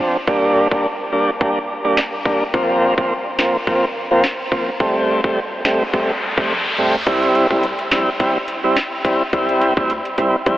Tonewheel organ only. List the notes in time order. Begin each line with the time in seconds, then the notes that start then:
0.00 F3 C4 D4
0.27 G3 A#3 D4
0.71 G3 A#3 D4
1.12 G3 A#3 D4
1.40 G3 A#3 D4
1.84 G3 A#3 D4
2.25 G3 A#3 D4
2.53 F3 A#3 C4
2.98 F3 A#3 C4
3.38 F3 A#3 C4
3.67 F3 A#3 C4
4.11 F3 A#3 C4
4.52 F3 A#3 C4
4.80 G3 A3 C4
5.24 G3 A3 C4
5.65 G3 A3 C4
5.93 G3 A3 C4
6.37 G3 A3 C4
6.78 G3 A3 C4
7.06 G3 C4 E4
7.50 G3 C4 E4
7.91 G3 C4 E4
8.20 G3 C4 E4
8.64 G3 C4 E4
9.04 G3 C4 E4
9.33 G3 C4 E4
9.77 G3 C4 E4
10.18 G3 C4 E4
10.46 G3 C4 E4